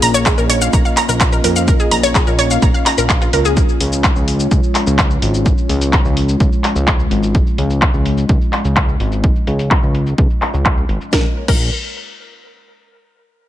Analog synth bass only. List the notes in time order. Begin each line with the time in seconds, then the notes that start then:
0.02 A#1
0.38 A#1
0.73 A#1
1.09 A#1
1.44 F2
1.91 A#1
2.27 A#1
2.62 A#1
2.98 A#1
3.33 C#2
3.81 C#2
4.16 C#2
4.51 C#2
4.87 C#2
5.22 G#1
5.69 C#2
6.05 C#2
6.40 C#2
6.76 C#2
7.11 G#1
7.58 C#2
7.94 C#2
8.29 C#2
8.65 C#2
9.00 G#1
9.47 C#2
9.83 C#2
10.18 C#2
10.54 C#2
10.89 G#1
11.13 A#1
11.48 A#1